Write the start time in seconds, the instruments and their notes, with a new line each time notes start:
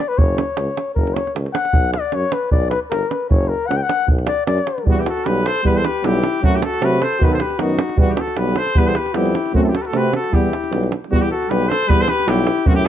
0.08 flugelhorn B4
0.18 tuba F#1, flugelhorn C#5, davul low
0.38 davul high
0.57 tuba C#2, davul high
0.77 davul high
0.95 tuba F#1, flugelhorn A#4, davul low
1.07 davul high
1.14 flugelhorn C#5, davul high
1.27 davul high
1.36 tuba C#2, davul high
1.46 davul high
1.53 flugelhorn F#5, davul high
1.65 davul high
1.73 tuba B1, davul low
1.94 flugelhorn D5, davul high
2.12 tuba F#2, flugelhorn C#5, davul high
2.32 flugelhorn B4, davul high
2.51 tuba B1, flugelhorn D5, davul low
2.70 flugelhorn B4, davul high
2.90 tuba G1, flugelhorn A#4, davul high
3.10 flugelhorn B4, davul high
3.30 tuba F#1, flugelhorn C#5, davul low
3.49 flugelhorn A#4
3.67 tuba C#2, flugelhorn F#5
3.71 davul high
3.77 flugelhorn G5
3.83 flugelhorn F#5
3.89 davul high
4.08 tuba B1, davul low
4.18 davul high
4.27 flugelhorn D5, davul high
4.47 tuba F#2, flugelhorn D5, davul high
4.58 davul high
4.67 davul high
4.78 davul high
4.84 tuba E2, euphonium G3, flugelhorn B3, french horn B3, davul low
4.90 trumpet F#4
4.97 flugelhorn E4, trumpet G4
5.06 flugelhorn F#4, trumpet A4, davul high
5.17 davul high
5.25 tuba B1, euphonium G3, french horn B3, flugelhorn G4, trumpet B4, davul high
5.37 davul high
5.44 flugelhorn A4, trumpet C5, davul high
5.56 davul high
5.64 tuba E2, euphonium G3, french horn B3, flugelhorn G4, trumpet B4, davul low
5.76 flugelhorn A4, trumpet C5
5.84 flugelhorn G4, trumpet B4, davul high
6.03 tuba B1, euphonium G3, french horn B3, flugelhorn E4, trumpet G4, davul high
6.15 davul high
6.23 davul high
6.34 davul high
6.42 tuba F#2, euphonium F#3, french horn A3, flugelhorn C4, trumpet F#4, davul low
6.54 flugelhorn E4, trumpet G4
6.62 flugelhorn F#4, trumpet A4, davul high
6.74 davul high
6.81 tuba C3, euphonium F#3, french horn A3, flugelhorn F#4, trumpet B4, davul high
6.93 davul high
7.01 flugelhorn A4, trumpet C5, davul high
7.13 davul high
7.19 tuba B1, euphonium D#3, french horn B3, flugelhorn F#4, davul low
7.24 trumpet B4
7.31 flugelhorn A4, trumpet C5, davul high
7.39 flugelhorn G4, trumpet B4, davul high
7.50 davul high
7.58 tuba F#2, euphonium D#3, french horn B3, flugelhorn D#4, trumpet F#4, davul high
7.69 davul high
7.79 davul high
7.89 davul high
7.97 tuba E2, euphonium G3, flugelhorn B3, french horn B3, trumpet F#4, davul low
8.07 flugelhorn D#4 E4, trumpet G4
8.12 flugelhorn E4, trumpet F#4 G4
8.17 flugelhorn F#4, trumpet A4, davul high
8.28 davul high
8.37 tuba B1, euphonium G3, french horn B3, flugelhorn G4, trumpet B4, davul high
8.48 davul high
8.56 flugelhorn A4, trumpet C5, davul high
8.67 davul high
8.75 tuba E2, euphonium G3, french horn B3, flugelhorn G4, trumpet B4, davul low
8.86 flugelhorn A4, trumpet C5
8.95 flugelhorn G4, trumpet B4, davul high
9.06 davul high
9.14 tuba F2, euphonium G3, french horn B3, flugelhorn E4, trumpet G4, davul high
9.26 davul high
9.35 davul high
9.46 davul high
9.53 tuba F#2, euphonium A3, flugelhorn C4, french horn C4, trumpet F#4, davul low
9.61 flugelhorn F#4, trumpet A4
9.65 flugelhorn E4, trumpet G4
9.73 flugelhorn F#4, trumpet A4, davul high
9.80 flugelhorn G4, trumpet B4
9.85 flugelhorn F#4, trumpet A4, davul high
9.93 tuba C3, euphonium A3, french horn C4, flugelhorn F#4, davul high
9.97 trumpet B4
10.13 flugelhorn F#4, trumpet A4, davul high
10.24 davul high
10.32 tuba E2, euphonium G3, french horn B3, flugelhorn E4, trumpet G4, davul low
10.53 davul high
10.64 davul high
10.71 tuba B1, euphonium G3, french horn B3, davul high
10.83 davul high
10.92 davul high
11.04 davul high
11.11 tuba E2, euphonium G3, flugelhorn B3, french horn B3, trumpet F#4, davul low
11.21 flugelhorn E4, trumpet G4
11.31 flugelhorn F#4, trumpet A4
11.43 davul high
11.48 tuba B1, euphonium G3, french horn B3, flugelhorn G4, trumpet B4, davul high
11.62 davul high
11.68 flugelhorn A4, trumpet C5, davul high
11.83 davul high
11.88 tuba E2, euphonium G3, french horn B3, flugelhorn G4, trumpet B4, davul low
12.01 flugelhorn A4, trumpet C5
12.08 flugelhorn G4, trumpet B4, davul high
12.20 davul high
12.26 tuba B1, euphonium G3, french horn B3, flugelhorn E4, trumpet G4, davul high
12.38 davul high
12.47 davul high
12.57 davul high
12.66 tuba F#2, euphonium F#3, french horn A3, flugelhorn C4, trumpet F#4, davul low
12.75 flugelhorn E4, trumpet G4